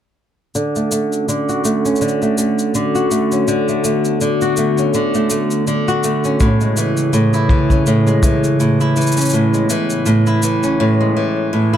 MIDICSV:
0, 0, Header, 1, 4, 480
1, 0, Start_track
1, 0, Tempo, 731707
1, 361, Time_signature, 4, 2, 24, 8
1, 7722, End_track
2, 0, Start_track
2, 0, Title_t, "Ambient pad"
2, 0, Program_c, 0, 92
2, 362, Note_on_c, 0, 61, 64
2, 362, Note_on_c, 0, 66, 77
2, 363, Note_on_c, 0, 50, 73
2, 2262, Note_off_c, 0, 61, 0
2, 2282, Note_on_c, 0, 59, 62
2, 4176, Note_off_c, 0, 50, 0
2, 4176, Note_off_c, 0, 66, 0
2, 4182, Note_off_c, 0, 59, 0
2, 4206, Note_on_c, 0, 49, 80
2, 4206, Note_on_c, 0, 68, 81
2, 6119, Note_on_c, 0, 59, 69
2, 7058, Note_off_c, 0, 49, 0
2, 7058, Note_off_c, 0, 68, 0
2, 7071, Note_off_c, 0, 59, 0
2, 7722, End_track
3, 0, Start_track
3, 0, Title_t, "Nylon-string guitar"
3, 0, Program_c, 1, 24
3, 361, Note_on_c, 1, 50, 71
3, 498, Note_on_c, 1, 57, 45
3, 599, Note_off_c, 1, 57, 0
3, 602, Note_on_c, 1, 57, 57
3, 835, Note_off_c, 1, 50, 0
3, 842, Note_on_c, 1, 50, 71
3, 977, Note_on_c, 1, 66, 57
3, 1078, Note_off_c, 1, 57, 0
3, 1081, Note_on_c, 1, 57, 58
3, 1215, Note_on_c, 1, 61, 54
3, 1312, Note_off_c, 1, 50, 0
3, 1320, Note_on_c, 1, 50, 68
3, 1455, Note_off_c, 1, 57, 0
3, 1458, Note_on_c, 1, 57, 51
3, 1560, Note_off_c, 1, 57, 0
3, 1563, Note_on_c, 1, 57, 54
3, 1795, Note_off_c, 1, 50, 0
3, 1803, Note_on_c, 1, 50, 73
3, 1928, Note_off_c, 1, 66, 0
3, 1936, Note_on_c, 1, 66, 55
3, 2040, Note_off_c, 1, 57, 0
3, 2042, Note_on_c, 1, 57, 54
3, 2174, Note_off_c, 1, 61, 0
3, 2177, Note_on_c, 1, 61, 50
3, 2274, Note_off_c, 1, 50, 0
3, 2282, Note_on_c, 1, 50, 75
3, 2416, Note_off_c, 1, 57, 0
3, 2418, Note_on_c, 1, 57, 51
3, 2520, Note_off_c, 1, 57, 0
3, 2523, Note_on_c, 1, 57, 54
3, 2756, Note_off_c, 1, 50, 0
3, 2764, Note_on_c, 1, 50, 72
3, 2890, Note_off_c, 1, 66, 0
3, 2898, Note_on_c, 1, 66, 63
3, 3001, Note_off_c, 1, 57, 0
3, 3003, Note_on_c, 1, 57, 55
3, 3134, Note_off_c, 1, 61, 0
3, 3137, Note_on_c, 1, 61, 52
3, 3236, Note_off_c, 1, 50, 0
3, 3244, Note_on_c, 1, 50, 72
3, 3375, Note_off_c, 1, 57, 0
3, 3378, Note_on_c, 1, 57, 51
3, 3479, Note_off_c, 1, 57, 0
3, 3482, Note_on_c, 1, 57, 55
3, 3714, Note_off_c, 1, 50, 0
3, 3722, Note_on_c, 1, 50, 69
3, 3850, Note_off_c, 1, 66, 0
3, 3857, Note_on_c, 1, 66, 60
3, 3960, Note_off_c, 1, 57, 0
3, 3963, Note_on_c, 1, 57, 55
3, 4095, Note_off_c, 1, 61, 0
3, 4098, Note_on_c, 1, 61, 54
3, 4201, Note_on_c, 1, 45, 68
3, 4255, Note_off_c, 1, 50, 0
3, 4256, Note_off_c, 1, 66, 0
3, 4334, Note_off_c, 1, 57, 0
3, 4336, Note_on_c, 1, 56, 49
3, 4442, Note_on_c, 1, 52, 57
3, 4670, Note_off_c, 1, 45, 0
3, 4678, Note_on_c, 1, 45, 76
3, 4815, Note_on_c, 1, 64, 58
3, 4914, Note_off_c, 1, 52, 0
3, 4922, Note_on_c, 1, 52, 62
3, 5056, Note_off_c, 1, 61, 0
3, 5059, Note_on_c, 1, 61, 49
3, 5154, Note_off_c, 1, 45, 0
3, 5162, Note_on_c, 1, 45, 71
3, 5288, Note_off_c, 1, 56, 0
3, 5296, Note_on_c, 1, 56, 58
3, 5395, Note_off_c, 1, 52, 0
3, 5403, Note_on_c, 1, 52, 59
3, 5633, Note_off_c, 1, 45, 0
3, 5641, Note_on_c, 1, 45, 69
3, 5770, Note_off_c, 1, 64, 0
3, 5778, Note_on_c, 1, 64, 66
3, 5876, Note_off_c, 1, 52, 0
3, 5884, Note_on_c, 1, 52, 62
3, 6015, Note_off_c, 1, 61, 0
3, 6018, Note_on_c, 1, 61, 56
3, 6115, Note_off_c, 1, 45, 0
3, 6123, Note_on_c, 1, 45, 72
3, 6251, Note_off_c, 1, 56, 0
3, 6259, Note_on_c, 1, 56, 53
3, 6355, Note_off_c, 1, 52, 0
3, 6363, Note_on_c, 1, 52, 63
3, 6592, Note_off_c, 1, 45, 0
3, 6600, Note_on_c, 1, 45, 80
3, 6728, Note_off_c, 1, 64, 0
3, 6736, Note_on_c, 1, 64, 61
3, 6834, Note_off_c, 1, 52, 0
3, 6842, Note_on_c, 1, 52, 58
3, 6975, Note_off_c, 1, 61, 0
3, 6977, Note_on_c, 1, 61, 55
3, 7077, Note_off_c, 1, 45, 0
3, 7085, Note_on_c, 1, 45, 77
3, 7212, Note_off_c, 1, 56, 0
3, 7220, Note_on_c, 1, 56, 57
3, 7317, Note_off_c, 1, 52, 0
3, 7324, Note_on_c, 1, 52, 61
3, 7555, Note_off_c, 1, 45, 0
3, 7563, Note_on_c, 1, 45, 73
3, 7690, Note_off_c, 1, 64, 0
3, 7698, Note_on_c, 1, 64, 66
3, 7722, Note_off_c, 1, 45, 0
3, 7722, Note_off_c, 1, 52, 0
3, 7722, Note_off_c, 1, 56, 0
3, 7722, Note_off_c, 1, 61, 0
3, 7722, Note_off_c, 1, 64, 0
3, 7722, End_track
4, 0, Start_track
4, 0, Title_t, "Drums"
4, 362, Note_on_c, 9, 69, 35
4, 427, Note_off_c, 9, 69, 0
4, 497, Note_on_c, 9, 69, 17
4, 563, Note_off_c, 9, 69, 0
4, 602, Note_on_c, 9, 69, 56
4, 667, Note_off_c, 9, 69, 0
4, 739, Note_on_c, 9, 69, 26
4, 805, Note_off_c, 9, 69, 0
4, 846, Note_on_c, 9, 69, 38
4, 911, Note_off_c, 9, 69, 0
4, 978, Note_on_c, 9, 69, 17
4, 1043, Note_off_c, 9, 69, 0
4, 1081, Note_on_c, 9, 69, 55
4, 1147, Note_off_c, 9, 69, 0
4, 1217, Note_on_c, 9, 69, 26
4, 1282, Note_off_c, 9, 69, 0
4, 1285, Note_on_c, 9, 69, 20
4, 1321, Note_off_c, 9, 69, 0
4, 1321, Note_on_c, 9, 69, 36
4, 1366, Note_off_c, 9, 69, 0
4, 1366, Note_on_c, 9, 69, 18
4, 1432, Note_off_c, 9, 69, 0
4, 1457, Note_on_c, 9, 69, 18
4, 1523, Note_off_c, 9, 69, 0
4, 1561, Note_on_c, 9, 69, 63
4, 1627, Note_off_c, 9, 69, 0
4, 1697, Note_on_c, 9, 69, 29
4, 1763, Note_off_c, 9, 69, 0
4, 1803, Note_on_c, 9, 69, 40
4, 1868, Note_off_c, 9, 69, 0
4, 1937, Note_on_c, 9, 69, 18
4, 2003, Note_off_c, 9, 69, 0
4, 2041, Note_on_c, 9, 69, 61
4, 2107, Note_off_c, 9, 69, 0
4, 2177, Note_on_c, 9, 69, 26
4, 2242, Note_off_c, 9, 69, 0
4, 2281, Note_on_c, 9, 69, 37
4, 2347, Note_off_c, 9, 69, 0
4, 2418, Note_on_c, 9, 69, 18
4, 2484, Note_off_c, 9, 69, 0
4, 2522, Note_on_c, 9, 69, 64
4, 2588, Note_off_c, 9, 69, 0
4, 2655, Note_on_c, 9, 69, 28
4, 2720, Note_off_c, 9, 69, 0
4, 2762, Note_on_c, 9, 69, 37
4, 2827, Note_off_c, 9, 69, 0
4, 2895, Note_on_c, 9, 69, 18
4, 2961, Note_off_c, 9, 69, 0
4, 2996, Note_on_c, 9, 69, 63
4, 3062, Note_off_c, 9, 69, 0
4, 3134, Note_on_c, 9, 69, 28
4, 3200, Note_off_c, 9, 69, 0
4, 3240, Note_on_c, 9, 69, 37
4, 3305, Note_off_c, 9, 69, 0
4, 3375, Note_on_c, 9, 69, 19
4, 3440, Note_off_c, 9, 69, 0
4, 3477, Note_on_c, 9, 69, 72
4, 3543, Note_off_c, 9, 69, 0
4, 3612, Note_on_c, 9, 69, 32
4, 3678, Note_off_c, 9, 69, 0
4, 3721, Note_on_c, 9, 69, 44
4, 3787, Note_off_c, 9, 69, 0
4, 3858, Note_on_c, 9, 69, 20
4, 3924, Note_off_c, 9, 69, 0
4, 3960, Note_on_c, 9, 69, 70
4, 4026, Note_off_c, 9, 69, 0
4, 4095, Note_on_c, 9, 69, 27
4, 4161, Note_off_c, 9, 69, 0
4, 4200, Note_on_c, 9, 69, 39
4, 4202, Note_on_c, 9, 36, 81
4, 4265, Note_off_c, 9, 69, 0
4, 4267, Note_off_c, 9, 36, 0
4, 4335, Note_on_c, 9, 69, 19
4, 4401, Note_off_c, 9, 69, 0
4, 4441, Note_on_c, 9, 69, 68
4, 4506, Note_off_c, 9, 69, 0
4, 4573, Note_on_c, 9, 69, 31
4, 4639, Note_off_c, 9, 69, 0
4, 4679, Note_on_c, 9, 69, 37
4, 4745, Note_off_c, 9, 69, 0
4, 4812, Note_on_c, 9, 69, 19
4, 4878, Note_off_c, 9, 69, 0
4, 4916, Note_on_c, 9, 36, 94
4, 4982, Note_off_c, 9, 36, 0
4, 5052, Note_on_c, 9, 36, 55
4, 5055, Note_on_c, 9, 69, 27
4, 5117, Note_off_c, 9, 36, 0
4, 5121, Note_off_c, 9, 69, 0
4, 5160, Note_on_c, 9, 69, 39
4, 5225, Note_off_c, 9, 69, 0
4, 5294, Note_on_c, 9, 69, 20
4, 5360, Note_off_c, 9, 69, 0
4, 5398, Note_on_c, 9, 36, 87
4, 5400, Note_on_c, 9, 69, 70
4, 5463, Note_off_c, 9, 36, 0
4, 5465, Note_off_c, 9, 69, 0
4, 5537, Note_on_c, 9, 69, 32
4, 5602, Note_off_c, 9, 69, 0
4, 5642, Note_on_c, 9, 69, 43
4, 5708, Note_off_c, 9, 69, 0
4, 5776, Note_on_c, 9, 69, 20
4, 5842, Note_off_c, 9, 69, 0
4, 5881, Note_on_c, 9, 69, 31
4, 5912, Note_off_c, 9, 69, 0
4, 5912, Note_on_c, 9, 69, 34
4, 5949, Note_off_c, 9, 69, 0
4, 5949, Note_on_c, 9, 69, 36
4, 5982, Note_off_c, 9, 69, 0
4, 5982, Note_on_c, 9, 69, 42
4, 6015, Note_off_c, 9, 69, 0
4, 6015, Note_on_c, 9, 69, 50
4, 6042, Note_off_c, 9, 69, 0
4, 6042, Note_on_c, 9, 69, 55
4, 6070, Note_off_c, 9, 69, 0
4, 6070, Note_on_c, 9, 69, 56
4, 6096, Note_off_c, 9, 69, 0
4, 6096, Note_on_c, 9, 69, 61
4, 6124, Note_off_c, 9, 69, 0
4, 6124, Note_on_c, 9, 69, 40
4, 6189, Note_off_c, 9, 69, 0
4, 6258, Note_on_c, 9, 69, 19
4, 6324, Note_off_c, 9, 69, 0
4, 6362, Note_on_c, 9, 69, 66
4, 6428, Note_off_c, 9, 69, 0
4, 6495, Note_on_c, 9, 69, 29
4, 6560, Note_off_c, 9, 69, 0
4, 6599, Note_on_c, 9, 69, 40
4, 6664, Note_off_c, 9, 69, 0
4, 6734, Note_on_c, 9, 69, 19
4, 6800, Note_off_c, 9, 69, 0
4, 6840, Note_on_c, 9, 69, 62
4, 6905, Note_off_c, 9, 69, 0
4, 6975, Note_on_c, 9, 69, 28
4, 7040, Note_off_c, 9, 69, 0
4, 7722, End_track
0, 0, End_of_file